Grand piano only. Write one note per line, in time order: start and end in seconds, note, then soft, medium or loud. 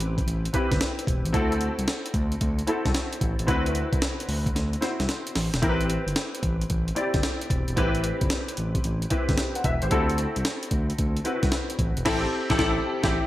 0.00 0.53 C4 medium
0.00 0.54 E4 medium
0.00 0.54 G4 medium
0.00 1.34 A4 medium
0.00 0.54 B4 loud
0.53 1.04 C4 medium
0.53 1.05 E4 medium
0.53 1.05 G4 medium
0.53 1.05 B4 medium
1.33 2.04 C4 medium
1.33 2.04 E4 medium
1.33 2.04 F#4 medium
1.33 2.04 A4 loud
2.67 3.18 C4 medium
2.67 3.19 E4 medium
2.67 3.19 F#4 medium
2.67 3.19 A4 medium
3.47 4.18 C4 medium
3.47 4.18 E4 medium
3.47 4.18 F#4 medium
3.47 4.18 B4 loud
4.81 5.33 C4 medium
4.81 5.33 E4 medium
4.81 5.33 F#4 medium
4.81 5.33 C5 medium
5.62 6.33 C4 medium
5.62 6.33 E4 medium
5.62 6.33 G4 medium
5.62 5.71 A#4 medium
5.69 6.36 B4 medium
6.95 7.47 C4 medium
6.95 7.47 E4 medium
6.95 7.47 G4 medium
6.95 7.47 D5 medium
7.76 8.47 C4 medium
7.76 8.47 E4 medium
7.76 8.47 G4 medium
7.76 8.48 B4 loud
9.10 9.62 C4 medium
9.10 9.62 E4 medium
9.10 9.38 G4 medium
9.10 9.38 B4 medium
9.56 9.64 C5 medium
9.56 9.64 F#5 medium
9.65 9.82 B4 medium
9.65 9.82 E5 medium
9.82 10.08 G4 medium
9.82 10.08 C5 medium
9.91 10.61 C4 medium
9.91 10.62 E4 medium
9.91 10.62 F#4 medium
9.91 10.62 A4 medium
11.24 11.76 C4 medium
11.24 11.76 E4 medium
11.24 11.76 F#4 medium
11.24 11.76 B4 medium
12.05 12.25 C4 loud
12.05 12.25 E4 loud
12.05 12.26 G4 loud
12.05 12.26 A4 loud
12.49 12.56 C4 medium
12.49 12.57 E4 loud
12.49 12.57 G4 loud
12.49 12.58 A4 loud
12.58 12.78 C4 loud
12.58 12.78 E4 loud
12.58 12.79 G4 loud
12.58 12.79 A4 loud
13.03 13.20 C4 medium
13.03 13.20 E4 medium
13.03 13.20 G4 loud